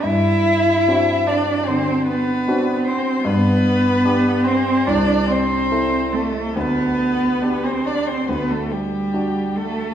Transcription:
<<
  \new Staff \with { instrumentName = "Violin" } { \time 4/4 \key g \major \tempo 4 = 72 e''4. d''8 c''8 b'4 c''8 | b'4. c''8 d''8 c''4 a'8 | b'4~ b'16 c''16 d''16 c''16 b'16 a'16 g'4 a'8 | }
  \new Staff \with { instrumentName = "Grand piano" } { \time 4/4 \key g \major g,4 <c' d' fis'>4 d4 <c' d' fis'>4 | g,4 <d' g'>4 c,4 <e' a'>4 | d,4 <d' g'>4 d,4 <d' fis'>4 | }
  \new Staff \with { instrumentName = "Cello" } { \time 4/4 \key g \major e'4. d'8 c'8 b4 c'8 | b4. c'8 d'8 c'4 a8 | b4~ b16 c'16 d'16 c'16 b16 a16 g4 a8 | }
>>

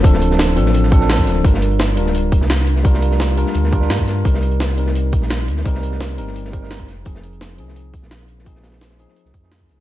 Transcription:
<<
  \new Staff \with { instrumentName = "Tine electric piano" } { \time 4/4 \key f \mixolydian \tempo 4 = 171 <f c' d' a'>4. <f c' d' a'>4 <f c' d' a'>16 <f c' d' a'>4~ <f c' d' a'>16 | <g d' f' bes'>4. <g d' f' bes'>2~ <g d' f' bes'>8 | <g d' f' bes'>4. <g d' f' bes'>4 <g d' f' bes'>16 <g d' f' bes'>4~ <g d' f' bes'>16 | <g c' ees' bes'>4. <g c' ees' bes'>2~ <g c' ees' bes'>8 |
<g c' ees' bes'>4. <g c' ees' bes'>4 <g c' ees' bes'>16 <g c' ees' bes'>8. r8 | <f c' ees' aes'>4. <f c' ees' aes'>2~ <f c' ees' aes'>8 | <f c' ees' aes'>4. <f c' ees' aes'>4 r16 <f c' ees' aes'>4~ <f c' ees' aes'>16 | }
  \new Staff \with { instrumentName = "Sub bass" } { \clef bass \time 4/4 \key f \mixolydian d,,4. a,,2 d,,8 | g,,4. d,,4~ d,,16 c,4~ c,16~ | c,4.~ c,16 r16 d,4 g,4 | c,2~ c,8 bes,,4 d,8 |
c,4. g,,2 f,,8 | f,,4. c,4~ c,16 bes,,4~ bes,,16~ | bes,,4.~ bes,,16 r8 c,16 f,4 c,8 | }
  \new DrumStaff \with { instrumentName = "Drums" } \drummode { \time 4/4 <hh bd>16 sn16 hh16 sn16 <hh sn>8 hh16 sn16 hh16 sn16 <hh bd>16 sn16 <hh hho sn>16 bd16 <hh sn>8 | <hh bd>16 sn16 hh16 hh16 <hh sn>8 hh16 sn16 hh8 <hh bd>16 sn16 <hh sn>16 sn16 hh16 sn16 | <hh bd>16 sn16 hh16 sn16 <hh sn>8 hh16 sn16 hh16 sn16 <hh bd>16 sn16 <hh hho sn>16 bd16 <hh sn>8 | <hh bd>16 sn16 hh16 hh16 <hh sn>8 hh16 sn16 hh8 <hh bd>16 sn16 <hh sn>16 sn16 hh16 sn16 |
<hh bd>16 sn16 hh16 sn16 <hh sn>8 hh16 sn16 hh16 sn16 <hh bd>16 sn16 <hh hho sn>16 bd16 <hh sn>8 | <hh bd>16 sn16 hh16 hh16 <hh sn>8 hh16 sn16 hh8 <hh bd>16 sn16 <hh sn>16 sn16 hh16 sn16 | <hh bd>16 sn16 <hh sn>16 <hh sn>16 <hh sn>16 <hh sn>16 hh16 sn16 hh16 sn16 <hh bd>16 sn16 <hh hho sn>16 bd16 <hh sn>8 | }
>>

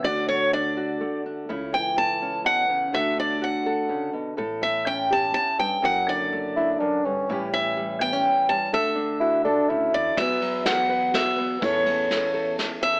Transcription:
<<
  \new Staff \with { instrumentName = "Steel-string acoustic guitar" } { \time 3/4 \key d \major \tempo 4 = 124 d''8 cis''8 d''4. r8 | r8 g''8 a''4 fis''4 | e''8 d''8 fis''4. r8 | r8 e''8 g''8 a''8 a''8 g''8 |
fis''8 d''4. r4 | r8 e''4 g''4 a''8 | e''2~ e''8 d''8 | e''4 fis''4 e''4 |
cis''2 r8 e''8 | }
  \new Staff \with { instrumentName = "Bassoon" } { \time 3/4 \key d \major r2. | r2. | r2. | r2. |
r4. e'16. e'32 d'8 cis'8~ | cis'16 r2 r8. | r4 e'8 d'8 e'4 | r2. |
r2. | }
  \new Staff \with { instrumentName = "Nylon-string guitar" } { \time 3/4 \key d \major << { fis'4 d'8 fis'4 d'8 | e'4 a8 cis'4. | <d' fis' a'>4 fis'8 a'4. | a'4 cis'8 g'4. |
fis'4 a8 d'4. | <e g cis' g'>4 g8 b16 cis'8. g8 | a'4 fis'8 a'4. | <fis b fis' b'>4 fis'8 b'8 fis'8 b8 |
<a cis' e' a'>4 e'8 a'4. | } \\ { d8 a4. a4 | cis8 e4. b,8 cis8 | d8 d'4. cis8 b,8 | a,8 a4. a,8 g,8 |
fis,8 d4. fis,8 g,8 | a,8 e4. e4 | d8 d'4. cis8 d8 | e,8 fis2~ fis8 |
e,8 a2 e,8 | } >> }
  \new Staff \with { instrumentName = "Upright bass" } { \clef bass \time 3/4 \key d \major d,2 r4 | cis,2 r4 | d,2 r4 | a,,2 r4 |
fis,,2 r4 | a,,2 r4 | d,4. cis,8 d,8 e,8 | e,2 r4 |
e,2 r4 | }
  \new DrumStaff \with { instrumentName = "Drums" } \drummode { \time 3/4 r4 r4 r4 | r4 r4 r4 | r4 r4 r4 | r4 r4 r4 |
r4 r4 r4 | r4 r4 r4 | r4 r4 r4 | <bd cymr>8 cymr8 <cymr sn>4 <cymr sn>4 |
<bd cymr>8 cymr8 <cymr sn>4 <cymr sn>4 | }
>>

